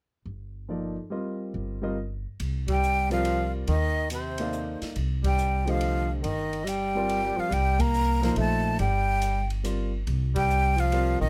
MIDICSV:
0, 0, Header, 1, 7, 480
1, 0, Start_track
1, 0, Tempo, 427046
1, 1256, Time_signature, 3, 2, 24, 8
1, 12694, End_track
2, 0, Start_track
2, 0, Title_t, "Flute"
2, 0, Program_c, 0, 73
2, 3045, Note_on_c, 0, 79, 91
2, 3479, Note_off_c, 0, 79, 0
2, 3503, Note_on_c, 0, 77, 83
2, 3947, Note_off_c, 0, 77, 0
2, 4161, Note_on_c, 0, 75, 87
2, 4596, Note_off_c, 0, 75, 0
2, 4652, Note_on_c, 0, 72, 70
2, 5389, Note_off_c, 0, 72, 0
2, 5917, Note_on_c, 0, 79, 85
2, 6406, Note_on_c, 0, 77, 83
2, 6423, Note_off_c, 0, 79, 0
2, 6870, Note_off_c, 0, 77, 0
2, 7036, Note_on_c, 0, 75, 83
2, 7514, Note_on_c, 0, 79, 92
2, 7530, Note_off_c, 0, 75, 0
2, 8315, Note_on_c, 0, 77, 82
2, 8332, Note_off_c, 0, 79, 0
2, 8470, Note_on_c, 0, 79, 94
2, 8487, Note_off_c, 0, 77, 0
2, 8778, Note_on_c, 0, 82, 100
2, 8795, Note_off_c, 0, 79, 0
2, 9255, Note_off_c, 0, 82, 0
2, 9277, Note_on_c, 0, 82, 84
2, 9413, Note_off_c, 0, 82, 0
2, 9440, Note_on_c, 0, 81, 87
2, 9872, Note_off_c, 0, 81, 0
2, 9898, Note_on_c, 0, 79, 88
2, 10649, Note_off_c, 0, 79, 0
2, 11656, Note_on_c, 0, 79, 101
2, 12138, Note_on_c, 0, 77, 88
2, 12155, Note_off_c, 0, 79, 0
2, 12599, Note_off_c, 0, 77, 0
2, 12606, Note_on_c, 0, 75, 83
2, 12694, Note_off_c, 0, 75, 0
2, 12694, End_track
3, 0, Start_track
3, 0, Title_t, "Grand piano"
3, 0, Program_c, 1, 0
3, 770, Note_on_c, 1, 53, 43
3, 775, Note_on_c, 1, 58, 40
3, 784, Note_on_c, 1, 63, 43
3, 789, Note_on_c, 1, 69, 39
3, 790, Note_on_c, 1, 74, 50
3, 1062, Note_off_c, 1, 53, 0
3, 1064, Note_off_c, 1, 58, 0
3, 1069, Note_off_c, 1, 63, 0
3, 1071, Note_off_c, 1, 69, 0
3, 1072, Note_off_c, 1, 74, 0
3, 1236, Note_on_c, 1, 55, 50
3, 1241, Note_on_c, 1, 60, 43
3, 1251, Note_on_c, 1, 65, 44
3, 1256, Note_on_c, 1, 75, 50
3, 1257, Note_on_c, 1, 70, 44
3, 1984, Note_off_c, 1, 55, 0
3, 1986, Note_off_c, 1, 60, 0
3, 1991, Note_off_c, 1, 65, 0
3, 1994, Note_off_c, 1, 70, 0
3, 1994, Note_off_c, 1, 75, 0
3, 2040, Note_on_c, 1, 55, 57
3, 2053, Note_on_c, 1, 60, 54
3, 2055, Note_on_c, 1, 65, 56
3, 2058, Note_on_c, 1, 70, 53
3, 2063, Note_on_c, 1, 75, 65
3, 2192, Note_off_c, 1, 55, 0
3, 2199, Note_off_c, 1, 60, 0
3, 2200, Note_off_c, 1, 65, 0
3, 2202, Note_off_c, 1, 70, 0
3, 2204, Note_off_c, 1, 75, 0
3, 3483, Note_on_c, 1, 55, 64
3, 3489, Note_on_c, 1, 60, 59
3, 3499, Note_on_c, 1, 65, 60
3, 3500, Note_on_c, 1, 70, 60
3, 3504, Note_on_c, 1, 74, 73
3, 4098, Note_off_c, 1, 55, 0
3, 4101, Note_off_c, 1, 60, 0
3, 4106, Note_off_c, 1, 65, 0
3, 4107, Note_off_c, 1, 70, 0
3, 4108, Note_off_c, 1, 74, 0
3, 4938, Note_on_c, 1, 58, 53
3, 4948, Note_on_c, 1, 69, 54
3, 4950, Note_on_c, 1, 63, 51
3, 4953, Note_on_c, 1, 74, 53
3, 4959, Note_on_c, 1, 77, 62
3, 5544, Note_off_c, 1, 58, 0
3, 5550, Note_off_c, 1, 63, 0
3, 5550, Note_off_c, 1, 69, 0
3, 5552, Note_off_c, 1, 74, 0
3, 5555, Note_off_c, 1, 77, 0
3, 6371, Note_on_c, 1, 57, 60
3, 6374, Note_on_c, 1, 50, 56
3, 6377, Note_on_c, 1, 67, 56
3, 6381, Note_on_c, 1, 72, 58
3, 6392, Note_on_c, 1, 75, 67
3, 6980, Note_off_c, 1, 57, 0
3, 6981, Note_off_c, 1, 50, 0
3, 6983, Note_off_c, 1, 67, 0
3, 6985, Note_off_c, 1, 72, 0
3, 6990, Note_off_c, 1, 75, 0
3, 7812, Note_on_c, 1, 55, 54
3, 7818, Note_on_c, 1, 60, 51
3, 7824, Note_on_c, 1, 65, 50
3, 7830, Note_on_c, 1, 70, 50
3, 7832, Note_on_c, 1, 74, 66
3, 8419, Note_off_c, 1, 55, 0
3, 8422, Note_off_c, 1, 60, 0
3, 8425, Note_off_c, 1, 65, 0
3, 8428, Note_off_c, 1, 70, 0
3, 8429, Note_off_c, 1, 74, 0
3, 9234, Note_on_c, 1, 53, 62
3, 9240, Note_on_c, 1, 63, 52
3, 9242, Note_on_c, 1, 46, 53
3, 9247, Note_on_c, 1, 69, 52
3, 9251, Note_on_c, 1, 72, 67
3, 9849, Note_off_c, 1, 53, 0
3, 9852, Note_off_c, 1, 63, 0
3, 9853, Note_off_c, 1, 46, 0
3, 9856, Note_off_c, 1, 69, 0
3, 9858, Note_off_c, 1, 72, 0
3, 10827, Note_on_c, 1, 55, 44
3, 10834, Note_on_c, 1, 60, 43
3, 10838, Note_on_c, 1, 65, 41
3, 10838, Note_on_c, 1, 70, 41
3, 10846, Note_on_c, 1, 74, 50
3, 11127, Note_off_c, 1, 55, 0
3, 11130, Note_off_c, 1, 60, 0
3, 11132, Note_off_c, 1, 65, 0
3, 11132, Note_off_c, 1, 70, 0
3, 11136, Note_off_c, 1, 74, 0
3, 12277, Note_on_c, 1, 55, 54
3, 12285, Note_on_c, 1, 60, 51
3, 12286, Note_on_c, 1, 65, 53
3, 12293, Note_on_c, 1, 70, 52
3, 12296, Note_on_c, 1, 74, 58
3, 12571, Note_off_c, 1, 55, 0
3, 12575, Note_off_c, 1, 60, 0
3, 12576, Note_off_c, 1, 65, 0
3, 12579, Note_off_c, 1, 70, 0
3, 12580, Note_off_c, 1, 74, 0
3, 12694, End_track
4, 0, Start_track
4, 0, Title_t, "Tenor saxophone"
4, 0, Program_c, 2, 66
4, 3012, Note_on_c, 2, 55, 75
4, 3462, Note_off_c, 2, 55, 0
4, 3500, Note_on_c, 2, 53, 80
4, 3946, Note_off_c, 2, 53, 0
4, 4136, Note_on_c, 2, 51, 72
4, 4583, Note_off_c, 2, 51, 0
4, 4620, Note_on_c, 2, 48, 59
4, 5374, Note_off_c, 2, 48, 0
4, 5888, Note_on_c, 2, 55, 68
4, 6364, Note_on_c, 2, 53, 73
4, 6381, Note_off_c, 2, 55, 0
4, 6849, Note_off_c, 2, 53, 0
4, 6996, Note_on_c, 2, 51, 74
4, 7471, Note_on_c, 2, 55, 72
4, 7488, Note_off_c, 2, 51, 0
4, 8288, Note_on_c, 2, 53, 71
4, 8305, Note_off_c, 2, 55, 0
4, 8437, Note_on_c, 2, 55, 79
4, 8453, Note_off_c, 2, 53, 0
4, 8760, Note_on_c, 2, 58, 79
4, 8777, Note_off_c, 2, 55, 0
4, 9241, Note_off_c, 2, 58, 0
4, 9248, Note_on_c, 2, 58, 73
4, 9397, Note_off_c, 2, 58, 0
4, 9413, Note_on_c, 2, 57, 72
4, 9858, Note_off_c, 2, 57, 0
4, 9885, Note_on_c, 2, 55, 69
4, 10642, Note_off_c, 2, 55, 0
4, 11634, Note_on_c, 2, 55, 82
4, 12105, Note_on_c, 2, 53, 80
4, 12122, Note_off_c, 2, 55, 0
4, 12588, Note_off_c, 2, 53, 0
4, 12595, Note_on_c, 2, 51, 70
4, 12694, Note_off_c, 2, 51, 0
4, 12694, End_track
5, 0, Start_track
5, 0, Title_t, "Upright bass"
5, 0, Program_c, 3, 32
5, 287, Note_on_c, 3, 31, 62
5, 1080, Note_off_c, 3, 31, 0
5, 1732, Note_on_c, 3, 31, 70
5, 2523, Note_off_c, 3, 31, 0
5, 2696, Note_on_c, 3, 36, 70
5, 4092, Note_off_c, 3, 36, 0
5, 4134, Note_on_c, 3, 39, 74
5, 5370, Note_off_c, 3, 39, 0
5, 5575, Note_on_c, 3, 36, 75
5, 6968, Note_off_c, 3, 36, 0
5, 7012, Note_on_c, 3, 31, 75
5, 8247, Note_off_c, 3, 31, 0
5, 8441, Note_on_c, 3, 36, 75
5, 9360, Note_off_c, 3, 36, 0
5, 9399, Note_on_c, 3, 34, 69
5, 9850, Note_off_c, 3, 34, 0
5, 9881, Note_on_c, 3, 31, 83
5, 11279, Note_off_c, 3, 31, 0
5, 11317, Note_on_c, 3, 36, 79
5, 12558, Note_off_c, 3, 36, 0
5, 12601, Note_on_c, 3, 34, 68
5, 12694, Note_off_c, 3, 34, 0
5, 12694, End_track
6, 0, Start_track
6, 0, Title_t, "Muted upright bass strokes"
6, 5412, Note_on_c, 9, 29, 36
6, 5524, Note_off_c, 9, 29, 0
6, 8293, Note_on_c, 9, 29, 34
6, 8405, Note_off_c, 9, 29, 0
6, 12694, End_track
7, 0, Start_track
7, 0, Title_t, "Drums"
7, 2694, Note_on_c, 9, 51, 51
7, 2807, Note_off_c, 9, 51, 0
7, 3012, Note_on_c, 9, 51, 62
7, 3015, Note_on_c, 9, 36, 72
7, 3125, Note_off_c, 9, 51, 0
7, 3128, Note_off_c, 9, 36, 0
7, 3182, Note_on_c, 9, 44, 56
7, 3294, Note_off_c, 9, 44, 0
7, 3495, Note_on_c, 9, 51, 39
7, 3607, Note_off_c, 9, 51, 0
7, 3651, Note_on_c, 9, 51, 53
7, 3763, Note_off_c, 9, 51, 0
7, 4130, Note_on_c, 9, 51, 49
7, 4242, Note_off_c, 9, 51, 0
7, 4608, Note_on_c, 9, 44, 61
7, 4608, Note_on_c, 9, 51, 68
7, 4720, Note_off_c, 9, 44, 0
7, 4720, Note_off_c, 9, 51, 0
7, 4921, Note_on_c, 9, 51, 59
7, 5033, Note_off_c, 9, 51, 0
7, 5087, Note_on_c, 9, 44, 59
7, 5199, Note_off_c, 9, 44, 0
7, 5414, Note_on_c, 9, 51, 39
7, 5415, Note_on_c, 9, 38, 31
7, 5527, Note_off_c, 9, 51, 0
7, 5528, Note_off_c, 9, 38, 0
7, 5571, Note_on_c, 9, 51, 50
7, 5683, Note_off_c, 9, 51, 0
7, 5892, Note_on_c, 9, 36, 76
7, 5893, Note_on_c, 9, 51, 64
7, 6004, Note_off_c, 9, 36, 0
7, 6005, Note_off_c, 9, 51, 0
7, 6049, Note_on_c, 9, 44, 58
7, 6161, Note_off_c, 9, 44, 0
7, 6377, Note_on_c, 9, 51, 41
7, 6490, Note_off_c, 9, 51, 0
7, 6526, Note_on_c, 9, 51, 55
7, 6639, Note_off_c, 9, 51, 0
7, 7011, Note_on_c, 9, 51, 51
7, 7124, Note_off_c, 9, 51, 0
7, 7338, Note_on_c, 9, 51, 39
7, 7450, Note_off_c, 9, 51, 0
7, 7497, Note_on_c, 9, 44, 53
7, 7497, Note_on_c, 9, 51, 66
7, 7610, Note_off_c, 9, 44, 0
7, 7610, Note_off_c, 9, 51, 0
7, 7973, Note_on_c, 9, 51, 55
7, 8085, Note_off_c, 9, 51, 0
7, 8454, Note_on_c, 9, 51, 54
7, 8567, Note_off_c, 9, 51, 0
7, 8763, Note_on_c, 9, 51, 62
7, 8767, Note_on_c, 9, 36, 71
7, 8876, Note_off_c, 9, 51, 0
7, 8879, Note_off_c, 9, 36, 0
7, 8924, Note_on_c, 9, 44, 60
7, 9036, Note_off_c, 9, 44, 0
7, 9252, Note_on_c, 9, 51, 41
7, 9253, Note_on_c, 9, 38, 31
7, 9364, Note_off_c, 9, 51, 0
7, 9365, Note_off_c, 9, 38, 0
7, 9397, Note_on_c, 9, 51, 51
7, 9509, Note_off_c, 9, 51, 0
7, 9879, Note_on_c, 9, 51, 52
7, 9991, Note_off_c, 9, 51, 0
7, 10359, Note_on_c, 9, 44, 60
7, 10359, Note_on_c, 9, 51, 60
7, 10471, Note_off_c, 9, 44, 0
7, 10471, Note_off_c, 9, 51, 0
7, 10680, Note_on_c, 9, 51, 44
7, 10793, Note_off_c, 9, 51, 0
7, 10841, Note_on_c, 9, 44, 51
7, 10841, Note_on_c, 9, 51, 63
7, 10954, Note_off_c, 9, 44, 0
7, 10954, Note_off_c, 9, 51, 0
7, 11319, Note_on_c, 9, 51, 50
7, 11431, Note_off_c, 9, 51, 0
7, 11642, Note_on_c, 9, 36, 74
7, 11642, Note_on_c, 9, 51, 66
7, 11754, Note_off_c, 9, 36, 0
7, 11754, Note_off_c, 9, 51, 0
7, 11800, Note_on_c, 9, 44, 63
7, 11912, Note_off_c, 9, 44, 0
7, 12118, Note_on_c, 9, 51, 45
7, 12230, Note_off_c, 9, 51, 0
7, 12274, Note_on_c, 9, 51, 57
7, 12387, Note_off_c, 9, 51, 0
7, 12694, End_track
0, 0, End_of_file